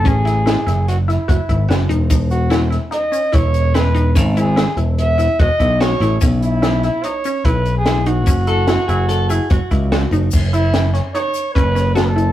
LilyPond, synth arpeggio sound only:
\new Staff \with { instrumentName = "Synth arpeggio sound" } { \time 5/4 \key fis \dorian \tempo 4 = 146 cis'8 e'8 e'8 e'4 e'8 fis'8 e'8 fis'8 dis'8 | dis'4 e'8 e'8 dis'8 cis'8 e'4 e'8 dis'8 | cis'8 e'8 e'8 e'4 e'8 fis'8 e'8 fis'8 e'8 | cis'4 e'8 e'8 dis'8 cis'8 e'4 e'8 dis'8 |
cis'8 e'8 e'8 e'4 e'8 fis'8 e'8 fis'8 dis'8 | r8 e'4 cis'8 dis'4 cis'8 cis'8 fis'8 e'8 | }